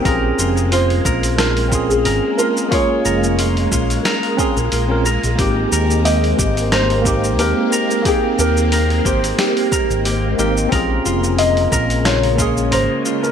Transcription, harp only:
X:1
M:4/4
L:1/8
Q:"Swing 16ths" 1/4=90
K:Bbdor
V:1 name="Harp"
B F F B F F B F | F B F F B F F B | G B G G B G G B | G G B G G B G G |
B F F B F F B F |]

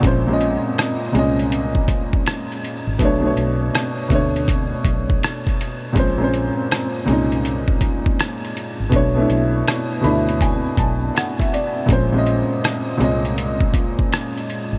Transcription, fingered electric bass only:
X:1
M:4/4
L:1/16
Q:"Swing 16ths" 1/4=81
K:Bbm
V:1 name="Fingered electric bass" clef=bass
B,,,3 z3 C,,6 z3 A,,, | =B,,,2 B,,,2 z2 =D,,4 B,,,2 z4 | B,,,3 z3 C,,6 z3 A,,, | =B,,,2 B,,,2 z2 =D,,4 B,,,2 z4 |
B,,,3 z3 C,,6 z3 A,,, |]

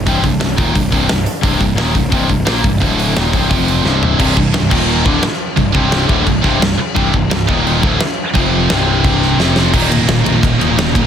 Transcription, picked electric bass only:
X:1
M:4/4
L:1/8
Q:1/4=174
K:Cm
V:1 name="Picked electric bass" clef=bass
C,,, C,,, C,,, E,,, C,,, C,,, C,,, z | C,,, C,,, E,,, C,,, C,,, C,,, B,,, C,,, | D,,,2 E,,, C,,, F,,,2 C,,,2 | C,,, C,,, C,,, E,,,2 D,,, z2 |
C,,, C,,,2 D,,, C,,, C,,, C,,, z | C,,, C,,, C,,, E,,,2 D,,, z2 | F,,,2 C,,,4 F,,,2 | E,,,2 E,,, B,,, E,,, E,,, E,,,2 |]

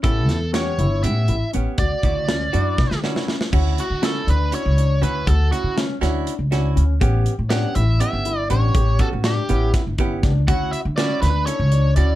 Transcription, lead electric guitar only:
X:1
M:7/8
L:1/8
Q:1/4=121
K:D
V:1 name="Lead electric guitar"
A2 c2 e2 z | d4- d z2 | z F A B c2 B | A F z4 z |
z2 f e e2 c- | c A G2 z3 | f e d B c2 d |]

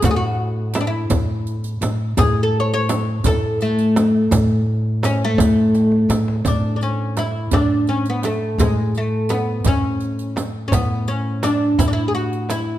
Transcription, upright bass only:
X:1
M:6/8
L:1/8
Q:3/8=56
K:none
V:1 name="Upright bass" clef=bass
A,,3 A,,2 A,, | A,,3 A,,3 | A,,3 A,,2 A,, | A,,3 A,,3 |
A,,3 A,,3 | A,,3 A,,3 |]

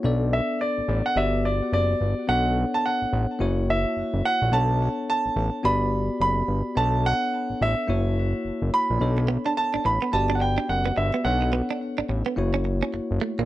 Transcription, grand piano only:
X:1
M:4/4
L:1/16
Q:"Swing 16ths" 1/4=107
K:Bm
V:1 name="Grand piano"
z2 e2 d3 f e2 d2 d4 | f3 a f6 e4 f2 | a4 a4 b4 b4 | a2 f4 e8 b2- |
b3 a a2 b2 a3/2 f/2 g2 f2 e2 | f4 z12 |]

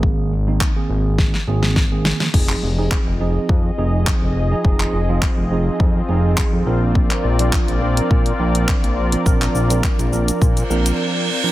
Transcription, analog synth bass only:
X:1
M:4/4
L:1/16
Q:1/4=104
K:Fdor
V:1 name="Analog synth bass" clef=bass
A,,,6 A,,,4 A,,,6 | F,,,2 F,,,3 F,,,3 F,,2 F,,,3 F,,,3 | F,,,2 F,,,3 F,,,3 F,,2 F,,,3 F,, B,,,2- | B,,,2 B,,,3 B,,,3 B,,2 B,,,3 B,,,3 |
B,,,2 B,,,3 B,,,3 B,,2 B,,,2 z4 |]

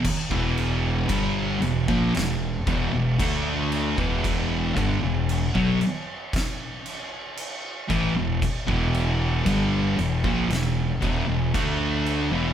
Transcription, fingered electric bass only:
X:1
M:4/4
L:1/16
Q:1/4=57
K:Em
V:1 name="Fingered electric bass" clef=bass
z E,,,3 G,,,2 E,,, ^A,,, E,,,2 E,,, E,,, D,,3 E,,,- | E,,,2 G,,, E,,,2 B,,, z8 A,,, E,,, | z E,,,3 G,,,2 E,,, ^A,,, E,,,2 E,,, E,,, D,,3 E,,, |]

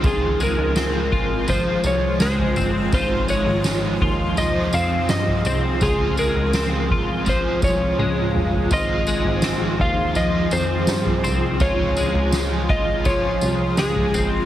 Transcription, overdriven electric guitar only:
X:1
M:4/4
L:1/8
Q:1/4=83
K:Db
V:1 name="Overdriven electric guitar"
[D,A,CFA]2 [A,CFA]2 [A,FA]4 | [A,EF]2 [A,EF]2 [EFc]4 | [D,A,CFA]2 [A,CFA]2 [A,FA]4 | [A,EFc]2 [A,EFc]2 [EFc]4 |
[D,A,FA]2 [A,FA]2 [A,FA]4 |]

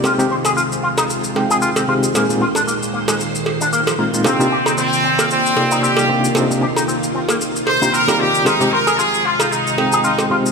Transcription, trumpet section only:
X:1
M:4/4
L:1/16
Q:"Swing 16ths" 1/4=114
K:Cm
V:1 name="Trumpet section"
z16 | z16 | C4 C4 C4 G3 z | z8 z2 c2 B2 G2 |
E2 B2 A2 F2 E4 E2 z2 |]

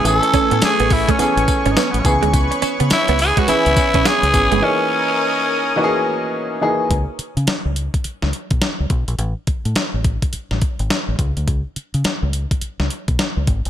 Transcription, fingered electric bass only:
X:1
M:4/4
L:1/16
Q:"Swing 16ths" 1/4=105
K:C#m
V:1 name="Fingered electric bass" clef=bass
A,,, z2 A,, z A,,,2 z2 A,,, z G,,, z A,,, C,, =D,, | C,, z2 C, z C,,2 z2 C,, z B,,, z C,, G,,, =G,,, | z16 | C,, z2 C, z C,,2 z2 C,, z B,,, z C,, B,,, ^A,,, |
A,,, z2 A,, z A,,,2 z2 A,,, z G,,, z A,,, C,, =D,, | C,, z2 C, z C,,2 z2 C,, z B,,, z C,, G,,, =G,,, |]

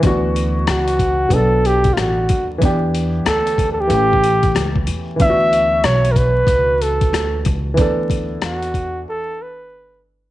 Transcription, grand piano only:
X:1
M:4/4
L:1/8
Q:"Swing 16ths" 1/4=93
K:D
V:1 name="Grand piano"
[E,B,DF]4 [F,B,DA]4 | [E,B,DG]4 [E,A,CG]4 | [E,B,DEF]8 | [E,B,DA]8 |]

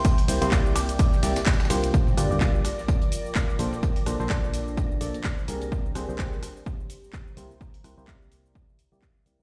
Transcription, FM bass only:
X:1
M:4/4
L:1/16
Q:"Swing 16ths" 1/4=127
K:Cmix
V:1 name="FM bass" clef=bass
z2 C,, C,, C,,6 C,, z3 C,,2 | z2 G,,, G,,, G,,,2 z8 B,,, z | z2 B,,, B,,, B,,,6 B,,, z3 C,,2- | C,,2 C,, C,, C,,2 z8 C,, z |
z2 C,, C,, C,,6- C,, C,,3 C,, C,, |]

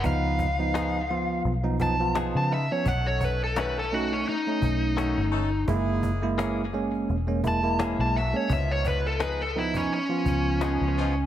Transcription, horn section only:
X:1
M:4/4
L:1/16
Q:"Swing 16ths" 1/4=85
K:C#dor
V:1 name="Horn section"
[B,D^EB]4 z8 z2 [B,DEB] z | [=A,CD=A]4 z8 z2 [A,CDA] z | [G,A,EG]4 z8 z2 [F,A,EF] z | [^E,B,D^E]4 z8 z2 [E,B,DE] z |]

